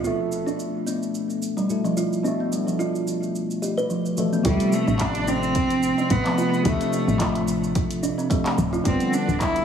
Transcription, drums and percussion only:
0.04 cabasa soft
0.32 cabasa medium
0.48 cabasa soft
0.59 cabasa soft
0.87 cabasa medium
1.03 cabasa soft
1.15 cabasa soft
1.30 cabasa soft
1.42 cabasa medium
1.58 cabasa soft
1.70 cabasa soft
1.85 cabasa soft
1.97 cabasa medium
2.13 cabasa soft
2.25 cabasa soft
2.52 cabasa medium
2.68 cabasa soft
2.80 cabasa soft
2.95 cabasa soft
3.08 cabasa medium
3.23 cabasa soft
3.35 cabasa soft
3.51 cabasa soft
3.63 cabasa medium
3.78 cabasa soft
3.90 cabasa soft
4.06 cabasa soft
4.17 cabasa medium
4.33 cabasa soft
4.45 kick loud
4.45 closed hi-hat medium
4.45 cabasa soft
4.60 closed hi-hat soft
4.60 cabasa soft
4.72 cabasa medium
4.88 cabasa soft
4.99 kick loud
4.99 clap medium
4.99 closed hi-hat medium
4.99 cabasa soft
5.15 closed hi-hat soft
5.28 cabasa medium
5.43 cabasa soft
5.55 kick loud
5.55 closed hi-hat medium
5.55 cabasa soft
5.70 closed hi-hat soft
5.70 cabasa soft
5.83 cabasa medium
5.98 cabasa soft
6.10 kick loud
6.10 closed hi-hat medium
6.10 cabasa soft
6.26 clap medium
6.26 closed hi-hat soft
6.38 cabasa medium
6.54 cabasa soft
6.65 kick loud
6.65 closed hi-hat medium
6.65 cabasa soft
6.81 closed hi-hat soft
6.81 cabasa soft
6.93 cabasa medium
7.08 cabasa soft
7.20 kick loud
7.20 clap medium
7.20 closed hi-hat medium
7.20 cabasa soft
7.35 closed hi-hat soft
7.48 cabasa medium
7.64 cabasa soft
7.75 kick loud
7.75 closed hi-hat medium
7.75 cabasa soft
7.91 closed hi-hat soft
7.91 cabasa soft
8.03 cabasa medium
8.19 cabasa soft
8.31 kick loud
8.31 closed hi-hat medium
8.31 cabasa soft
8.46 clap medium
8.46 closed hi-hat soft
8.58 cabasa medium
8.74 cabasa soft
8.85 kick loud
8.85 closed hi-hat medium
8.85 cabasa medium
9.00 closed hi-hat soft
9.00 cabasa soft
9.13 cabasa medium
9.29 cabasa soft
9.41 kick loud
9.41 clap medium
9.41 closed hi-hat medium
9.41 cabasa soft
9.56 closed hi-hat soft

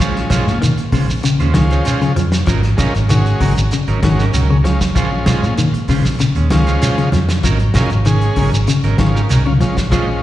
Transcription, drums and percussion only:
0.01 shekere medium
0.16 snare soft
0.30 kick medium
0.30 snare medium
0.30 closed hi-hat soft
0.30 high conga medium
0.30 shekere medium
0.47 snare soft
0.47 shekere soft
0.62 closed hi-hat medium
0.62 low conga medium
0.62 shekere medium
0.78 closed hi-hat soft
0.92 kick medium
0.92 open hi-hat medium
0.92 low conga medium
0.92 shekere soft
1.10 shekere medium
1.23 closed hi-hat medium
1.23 shekere medium
1.40 closed hi-hat soft
1.54 snare medium
1.54 closed hi-hat medium
1.54 high conga medium
1.71 closed hi-hat soft
1.71 shekere soft
1.85 closed hi-hat medium
1.85 shekere medium
2.01 closed hi-hat soft
2.01 high conga medium
2.16 closed hi-hat medium
2.16 high conga medium
2.16 low conga medium
2.16 shekere soft
2.32 snare medium
2.32 closed hi-hat soft
2.32 shekere medium
2.46 kick medium
2.46 closed hi-hat medium
2.46 shekere medium
2.63 snare soft
2.63 closed hi-hat soft
2.78 kick medium
2.78 snare medium
2.78 closed hi-hat soft
2.78 high conga medium
2.78 shekere medium
2.94 snare soft
2.94 closed hi-hat soft
2.94 shekere soft
3.09 closed hi-hat medium
3.09 low conga medium
3.09 shekere medium
3.26 closed hi-hat soft
3.40 kick medium
3.40 open hi-hat medium
3.40 low conga medium
3.40 shekere soft
3.56 closed hi-hat soft
3.56 shekere medium
3.71 closed hi-hat medium
3.71 shekere medium
3.87 closed hi-hat soft
4.03 kick medium
4.03 snare medium
4.03 closed hi-hat soft
4.03 high conga medium
4.19 snare soft
4.19 shekere soft
4.34 closed hi-hat medium
4.34 shekere medium
4.50 high conga medium
4.65 snare soft
4.65 closed hi-hat soft
4.65 high conga medium
4.65 low conga medium
4.65 shekere soft
4.81 kick medium
4.81 snare medium
4.81 shekere medium
4.96 kick medium
4.96 closed hi-hat medium
4.96 shekere medium
5.26 kick medium
5.26 snare medium
5.26 closed hi-hat medium
5.26 high conga medium
5.26 shekere medium
5.44 shekere soft
5.58 closed hi-hat medium
5.58 shekere medium
5.74 closed hi-hat soft
5.88 kick medium
5.88 open hi-hat medium
5.88 low conga medium
5.88 shekere soft
6.04 snare soft
6.04 shekere medium
6.19 closed hi-hat medium
6.19 shekere medium
6.35 closed hi-hat soft
6.50 snare medium
6.50 closed hi-hat medium
6.50 high conga medium
6.67 closed hi-hat soft
6.67 shekere soft
6.82 snare soft
6.82 closed hi-hat medium
6.82 shekere medium
6.98 closed hi-hat soft
6.98 high conga medium
7.12 snare soft
7.12 closed hi-hat soft
7.12 high conga medium
7.12 low conga medium
7.12 shekere soft
7.29 snare medium
7.29 closed hi-hat soft
7.29 shekere medium
7.43 kick medium
7.43 closed hi-hat medium
7.43 low conga medium
7.43 shekere medium
7.59 closed hi-hat soft
7.74 kick medium
7.74 snare medium
7.74 closed hi-hat medium
7.74 high conga medium
7.74 shekere medium
7.90 closed hi-hat soft
7.90 high conga medium
7.90 shekere soft
8.05 closed hi-hat medium
8.05 shekere medium
8.21 closed hi-hat soft
8.36 kick medium
8.36 open hi-hat medium
8.36 low conga medium
8.36 shekere soft
8.53 closed hi-hat soft
8.53 shekere medium
8.67 closed hi-hat medium
8.67 shekere medium
8.83 closed hi-hat soft
8.98 kick medium
8.98 snare medium
8.98 closed hi-hat soft
8.98 high conga medium
9.17 shekere soft
9.29 snare soft
9.29 closed hi-hat medium
9.29 shekere medium
9.46 high conga medium
9.60 closed hi-hat soft
9.60 high conga medium
9.60 low conga medium
9.60 shekere soft
9.77 kick medium
9.77 snare medium
9.77 shekere medium
9.92 kick medium
9.92 closed hi-hat medium
9.92 shekere medium

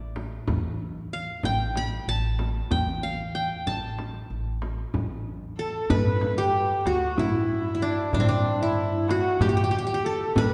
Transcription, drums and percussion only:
0.16 frame drum medium
0.47 frame drum medium
1.43 frame drum medium
1.76 frame drum medium
2.39 frame drum medium
2.71 frame drum medium
3.67 frame drum medium
3.99 frame drum soft
4.62 frame drum medium
4.94 frame drum medium
5.90 frame drum medium
5.90 darbuka dum medium
6.21 darbuka tek medium
6.21 frame drum medium
6.54 darbuka ka soft
6.86 darbuka tek medium
6.86 frame drum medium
7.17 darbuka dum medium
7.17 frame drum medium
7.49 darbuka ka soft
7.98 darbuka ka soft
8.12 darbuka dum loud
8.12 frame drum medium
8.44 darbuka tek medium
8.77 darbuka ka soft
9.08 darbuka tek medium
9.08 frame drum medium
9.40 darbuka dum medium
9.40 frame drum medium
10.03 darbuka ka soft
10.20 darbuka ka soft
10.36 darbuka dum medium
10.36 frame drum medium

